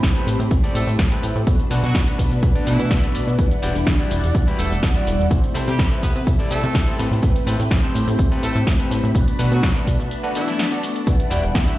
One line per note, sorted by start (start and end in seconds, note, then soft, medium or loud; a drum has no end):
0.00 0.14 A1 loud
0.00 0.24 A3 medium
0.00 0.24 C4 medium
0.00 1.45 C4 medium
0.00 0.24 E4 medium
0.00 0.24 G4 medium
0.00 1.45 G4 medium
0.00 0.25 B4 loud
0.00 1.45 B5 medium
0.00 kick loud
0.00 snare loud
0.00 closed hi-hat medium
0.04 shaker soft
0.16 0.40 C4 medium
0.16 0.40 G4 medium
0.16 0.40 A4 medium
0.16 0.40 B4 loud
0.16 closed hi-hat soft
0.16 shaker soft
0.26 0.37 A2 loud
0.26 1.44 A3 loud
0.26 1.44 C4 medium
0.26 1.44 E4 medium
0.26 1.44 G4 medium
0.26 open hi-hat loud
0.26 shaker medium
0.39 0.49 A2 loud
0.39 closed hi-hat soft
0.39 shaker soft
0.51 0.62 A1 medium
0.51 kick loud
0.51 closed hi-hat medium
0.51 shaker soft
0.64 0.88 C4 loud
0.64 0.88 G4 loud
0.64 0.88 A4 loud
0.64 0.88 D5 loud
0.64 closed hi-hat soft
0.64 shaker soft
0.75 0.85 A2 medium
0.75 0.96 A3 medium
0.75 0.96 A4 medium
0.75 open hi-hat loud
0.75 shaker medium
0.87 0.97 A2 loud
0.87 closed hi-hat soft
0.87 shaker soft
0.99 1.10 A1 loud
0.99 kick loud
0.99 snare loud
0.99 closed hi-hat medium
0.99 shaker soft
1.12 1.41 C4 medium
1.12 1.41 G4 medium
1.12 1.41 A4 medium
1.12 1.41 B4 loud
1.12 closed hi-hat soft
1.12 shaker soft
1.23 1.33 A2 loud
1.23 open hi-hat medium
1.23 shaker medium
1.35 1.45 A2 medium
1.35 shaker soft
1.46 1.58 B1 loud
1.46 2.16 A3 medium
1.46 2.16 B3 medium
1.46 2.16 D4 medium
1.46 3.37 D4 medium
1.46 2.16 F#4 medium
1.46 3.37 B4 medium
1.46 2.17 B4 medium
1.46 3.37 A5 medium
1.46 kick loud
1.46 closed hi-hat medium
1.46 shaker soft
1.60 closed hi-hat soft
1.60 shaker soft
1.71 1.81 B2 loud
1.71 1.83 D4 loud
1.71 1.84 F#4 loud
1.71 1.84 A4 loud
1.71 1.84 B4 loud
1.71 open hi-hat loud
1.71 shaker medium
1.83 1.93 B2 medium
1.83 2.05 F#3 medium
1.83 2.05 F#4 medium
1.83 closed hi-hat soft
1.83 shaker soft
1.95 2.05 B1 loud
1.95 kick loud
1.95 snare loud
1.95 closed hi-hat medium
1.95 shaker soft
2.08 2.32 D4 medium
2.08 2.32 F#4 medium
2.08 2.32 A4 medium
2.08 2.32 B4 loud
2.08 closed hi-hat soft
2.08 shaker soft
2.18 2.29 B2 loud
2.18 3.36 A3 medium
2.18 3.36 B3 medium
2.18 3.36 D4 medium
2.18 3.36 F#4 medium
2.18 3.37 B4 loud
2.18 kick medium
2.18 open hi-hat loud
2.18 shaker medium
2.31 2.41 B2 loud
2.31 closed hi-hat soft
2.31 shaker soft
2.43 2.53 B1 medium
2.43 kick loud
2.43 closed hi-hat medium
2.43 shaker soft
2.55 2.65 B2 soft
2.55 2.80 D4 loud
2.55 2.80 F#4 loud
2.55 2.80 A4 loud
2.55 2.80 D5 loud
2.55 closed hi-hat soft
2.55 shaker soft
2.67 2.77 B2 medium
2.67 3.04 E3 medium
2.67 3.04 E4 medium
2.67 2.89 F#5 medium
2.67 open hi-hat loud
2.67 shaker medium
2.79 2.92 B2 medium
2.79 closed hi-hat soft
2.79 shaker soft
2.91 3.16 B1 loud
2.91 3.13 E5 medium
2.91 kick loud
2.91 snare loud
2.91 closed hi-hat medium
2.91 shaker soft
3.03 3.33 D4 medium
3.03 3.33 F#4 medium
3.03 3.33 A4 medium
3.03 3.34 B4 loud
3.03 closed hi-hat soft
3.03 shaker soft
3.15 3.25 B2 loud
3.15 3.37 D5 medium
3.15 open hi-hat medium
3.15 shaker medium
3.27 3.37 B2 medium
3.27 shaker soft
3.38 3.49 E2 loud
3.38 4.08 G3 medium
3.38 5.29 G3 medium
3.38 4.08 D4 medium
3.38 5.29 D4 medium
3.38 4.08 E4 medium
3.38 4.08 B4 loud
3.38 4.08 F#5 medium
3.38 5.29 F#5 medium
3.38 kick loud
3.38 closed hi-hat medium
3.38 shaker soft
3.51 closed hi-hat soft
3.51 shaker soft
3.62 3.73 E1 loud
3.62 3.75 E4 loud
3.62 3.76 F#4 medium
3.62 3.76 G4 loud
3.62 3.76 D5 loud
3.62 open hi-hat loud
3.62 shaker medium
3.75 3.85 E1 loud
3.75 closed hi-hat soft
3.75 shaker soft
3.87 3.97 E2 loud
3.87 kick loud
3.87 snare loud
3.87 closed hi-hat medium
3.87 shaker soft
3.99 4.23 E4 medium
3.99 4.23 F#4 medium
3.99 4.24 G4 medium
3.99 4.24 D5 loud
3.99 closed hi-hat soft
3.99 shaker soft
4.10 4.21 E1 loud
4.10 5.28 G3 medium
4.10 5.28 D4 medium
4.10 5.28 E4 medium
4.10 5.28 D5 loud
4.10 5.28 F#5 medium
4.10 open hi-hat loud
4.10 shaker medium
4.24 4.33 E1 loud
4.24 closed hi-hat soft
4.24 shaker soft
4.35 4.45 E2 medium
4.35 kick loud
4.35 closed hi-hat medium
4.35 shaker soft
4.47 4.71 E4 loud
4.47 4.71 F#4 medium
4.47 4.72 G4 loud
4.47 4.72 B4 loud
4.47 closed hi-hat soft
4.47 shaker soft
4.59 4.70 E1 medium
4.59 4.80 A3 medium
4.59 4.80 A4 medium
4.59 open hi-hat loud
4.59 shaker medium
4.71 4.81 E1 loud
4.71 closed hi-hat soft
4.71 shaker soft
4.83 4.93 E2 loud
4.83 kick loud
4.83 snare loud
4.83 closed hi-hat medium
4.83 shaker soft
4.95 5.25 E4 loud
4.95 5.25 F#4 medium
4.95 5.25 G4 medium
4.95 5.25 D5 loud
4.95 closed hi-hat soft
4.95 shaker soft
5.07 5.18 E1 loud
5.07 open hi-hat medium
5.07 shaker medium
5.20 5.29 E1 medium
5.20 shaker soft
5.30 5.41 C2 loud
5.30 6.00 A3 medium
5.30 6.00 C4 medium
5.30 9.11 C4 medium
5.30 6.00 E4 medium
5.30 6.00 G4 medium
5.30 6.97 A4 medium
5.30 6.01 C5 medium
5.30 6.97 E5 medium
5.30 kick loud
5.30 closed hi-hat medium
5.30 shaker soft
5.44 closed hi-hat soft
5.44 shaker soft
5.54 5.65 C3 loud
5.54 5.67 E4 loud
5.54 5.68 G4 loud
5.54 5.68 A4 loud
5.54 5.68 C5 loud
5.54 open hi-hat loud
5.54 shaker medium
5.68 5.77 C3 loud
5.68 5.89 G3 medium
5.68 5.89 G4 medium
5.68 closed hi-hat soft
5.68 shaker soft
5.79 5.89 C2 loud
5.79 kick loud
5.79 snare loud
5.79 closed hi-hat medium
5.79 shaker soft
5.91 6.15 E4 medium
5.91 6.16 G4 medium
5.91 6.16 A4 medium
5.91 6.16 B4 loud
5.91 closed hi-hat soft
5.91 shaker soft
6.02 6.14 C3 loud
6.02 6.97 A3 medium
6.02 6.11 B3 medium
6.02 6.97 C4 medium
6.02 6.97 E4 medium
6.02 6.98 G4 medium
6.02 6.11 B4 medium
6.02 kick medium
6.02 open hi-hat medium
6.02 shaker medium
6.15 6.25 C3 loud
6.15 6.23 B3 medium
6.15 6.23 B4 medium
6.15 closed hi-hat soft
6.15 shaker soft
6.27 6.38 C2 medium
6.27 kick loud
6.27 closed hi-hat medium
6.27 shaker soft
6.39 6.49 C3 soft
6.39 6.63 E4 loud
6.39 6.63 G4 loud
6.39 6.64 A4 loud
6.39 6.64 D5 loud
6.39 closed hi-hat soft
6.39 shaker soft
6.51 6.61 C3 medium
6.51 7.04 A3 medium
6.51 7.04 A4 loud
6.51 open hi-hat loud
6.51 shaker medium
6.63 6.73 C3 loud
6.63 closed hi-hat soft
6.63 shaker soft
6.75 6.85 C2 loud
6.75 kick loud
6.75 snare loud
6.75 closed hi-hat medium
6.75 shaker soft
6.87 6.99 E4 loud
6.87 6.98 G4 medium
6.87 6.98 A4 medium
6.87 6.99 C5 loud
6.87 closed hi-hat soft
6.87 shaker soft
6.99 7.10 A2 loud
6.99 7.38 C4 loud
6.99 7.38 G4 medium
6.99 7.38 A4 medium
6.99 7.38 B4 loud
6.99 9.13 G5 medium
6.99 11.03 B5 medium
6.99 open hi-hat medium
6.99 shaker medium
7.11 7.21 A2 medium
7.11 shaker soft
7.22 7.33 A1 loud
7.22 7.92 A3 medium
7.22 7.92 C4 medium
7.22 7.92 E4 medium
7.22 7.92 G4 medium
7.22 7.92 B4 loud
7.22 kick loud
7.22 closed hi-hat medium
7.22 shaker soft
7.36 closed hi-hat soft
7.36 shaker soft
7.46 7.57 A2 medium
7.46 7.60 C4 loud
7.46 7.60 G4 loud
7.46 7.60 A4 loud
7.46 7.60 B4 loud
7.46 open hi-hat loud
7.46 shaker medium
7.59 7.69 A2 loud
7.59 closed hi-hat soft
7.59 shaker soft
7.71 7.81 A1 loud
7.71 kick loud
7.71 snare loud
7.71 closed hi-hat medium
7.71 shaker soft
7.83 8.07 C4 medium
7.83 8.08 G4 medium
7.83 8.08 A4 medium
7.83 8.08 C5 loud
7.83 closed hi-hat soft
7.83 shaker soft
7.94 8.05 A2 loud
7.94 9.12 A3 medium
7.94 9.12 C4 medium
7.94 9.12 E4 medium
7.94 9.12 G4 medium
7.94 open hi-hat medium
7.94 shaker medium
8.07 8.17 A2 loud
8.07 closed hi-hat soft
8.07 shaker soft
8.19 8.29 A1 medium
8.19 kick loud
8.19 closed hi-hat medium
8.19 shaker soft
8.31 8.55 C4 loud
8.31 8.56 G4 loud
8.31 8.56 A4 loud
8.31 8.56 B4 loud
8.31 closed hi-hat soft
8.31 shaker soft
8.43 8.53 A2 medium
8.43 8.64 A3 medium
8.43 8.64 A4 medium
8.43 open hi-hat loud
8.43 shaker medium
8.55 8.65 A2 loud
8.55 closed hi-hat soft
8.55 shaker soft
8.67 8.77 A1 loud
8.67 kick loud
8.67 snare loud
8.67 closed hi-hat medium
8.67 shaker soft
8.79 9.09 C4 medium
8.79 9.09 G4 medium
8.79 9.09 A4 medium
8.79 9.09 B4 loud
8.79 closed hi-hat soft
8.79 shaker soft
8.91 9.01 A2 loud
8.91 open hi-hat medium
8.91 shaker medium
9.03 9.13 A2 loud
9.03 shaker soft
9.14 9.25 B1 loud
9.14 9.84 A3 medium
9.14 9.84 B3 medium
9.14 9.84 D4 medium
9.14 11.78 D4 medium
9.14 9.84 F#4 medium
9.14 9.85 B4 medium
9.14 11.05 A5 medium
9.14 kick loud
9.14 closed hi-hat loud
9.14 shaker soft
9.28 closed hi-hat soft
9.28 shaker soft
9.39 9.50 B2 medium
9.39 9.52 D4 loud
9.39 9.52 F#4 loud
9.39 9.52 A4 loud
9.39 9.52 B4 loud
9.39 open hi-hat loud
9.39 shaker medium
9.52 9.61 B2 loud
9.52 9.73 F#3 medium
9.52 9.73 F#4 medium
9.52 closed hi-hat soft
9.52 shaker soft
9.63 9.73 B1 loud
9.63 kick loud
9.63 snare loud
9.63 closed hi-hat loud
9.63 shaker soft
9.75 9.99 D4 medium
9.75 9.99 F#4 medium
9.75 10.00 A4 medium
9.75 10.00 B4 loud
9.75 closed hi-hat soft
9.75 shaker soft
9.86 9.97 B2 loud
9.86 10.32 A3 medium
9.86 10.33 B3 medium
9.86 10.33 D4 medium
9.86 10.33 F#4 medium
9.86 10.33 B4 loud
9.86 kick medium
9.86 open hi-hat medium
9.86 shaker medium
9.99 10.09 B2 loud
9.99 closed hi-hat soft
9.99 shaker soft
10.11 closed hi-hat loud
10.11 shaker soft
10.23 10.47 D4 loud
10.23 10.47 F#4 loud
10.23 10.48 A4 loud
10.23 10.48 B4 loud
10.23 closed hi-hat soft
10.23 shaker soft
10.34 10.72 E3 medium
10.34 11.04 A3 medium
10.34 11.04 B3 medium
10.34 11.04 D4 medium
10.34 10.72 E4 medium
10.34 11.04 F#4 medium
10.34 11.05 A4 medium
10.34 open hi-hat loud
10.34 shaker medium
10.48 snare soft
10.48 closed hi-hat soft
10.48 shaker soft
10.59 snare loud
10.59 closed hi-hat loud
10.59 shaker soft
10.72 11.01 D4 medium
10.72 11.01 F#4 medium
10.72 11.01 A4 medium
10.72 11.02 D5 loud
10.72 closed hi-hat soft
10.72 shaker soft
10.83 open hi-hat medium
10.83 shaker medium
10.96 closed hi-hat soft
10.96 shaker soft
11.06 11.17 E2 loud
11.06 11.76 G3 medium
11.06 11.78 G3 medium
11.06 11.76 D4 medium
11.06 11.76 E4 medium
11.06 11.77 B4 loud
11.06 11.78 F#5 medium
11.06 11.77 F#5 medium
11.06 kick loud
11.06 closed hi-hat loud
11.06 shaker soft
11.20 closed hi-hat soft
11.20 shaker soft
11.30 11.41 E1 loud
11.30 11.43 E4 loud
11.30 11.43 F#4 loud
11.30 11.44 G4 loud
11.30 11.44 D5 loud
11.30 open hi-hat loud
11.30 shaker medium
11.43 11.53 E1 medium
11.43 closed hi-hat soft
11.43 shaker soft
11.55 11.65 E2 loud
11.55 muted clean electric guitar stroke soft
11.55 kick loud
11.55 snare loud
11.55 closed hi-hat loud
11.55 shaker soft
11.67 11.78 E4 medium
11.67 11.78 F#4 medium
11.67 11.78 G4 medium
11.67 11.78 E5 loud
11.67 closed hi-hat soft
11.67 shaker soft